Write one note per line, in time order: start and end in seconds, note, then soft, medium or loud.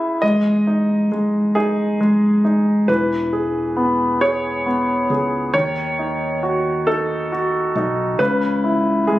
0.00 0.19 C#3 medium
0.00 0.25 E4 soft
0.00 0.24 G#4 soft
0.00 0.26 E5 medium
0.22 1.10 G#3 soft
0.22 1.59 D#5 medium
0.67 1.54 D#4 soft
1.12 1.99 G#3 soft
1.55 2.43 D#4 soft
1.55 2.92 G#4 medium
2.00 2.86 G#3 soft
2.45 2.87 D#4 soft
2.88 5.06 E1 medium
2.88 5.50 E3 medium
2.88 4.25 B4 medium
3.33 4.20 G#4 soft
3.77 4.65 B3 soft
4.21 5.09 G#4 soft
4.21 5.50 C#5 medium
4.66 5.52 B3 soft
5.10 5.52 C#2 medium
5.10 5.53 G#4 soft
5.54 7.71 D#2 medium
5.54 8.16 D#3 medium
5.54 6.91 C#5 medium
5.99 6.86 D#4 soft
6.43 7.31 F#4 soft
6.87 7.75 D#4 soft
6.87 8.24 A4 medium
7.32 8.18 F#4 soft
7.75 8.17 B1 medium
7.75 8.19 D#4 soft
8.19 9.19 C#2 medium
8.19 9.19 C#3 medium
8.19 9.04 B4 medium
8.64 9.19 E4 soft
9.07 9.19 G#3 soft
9.07 9.19 G#4 medium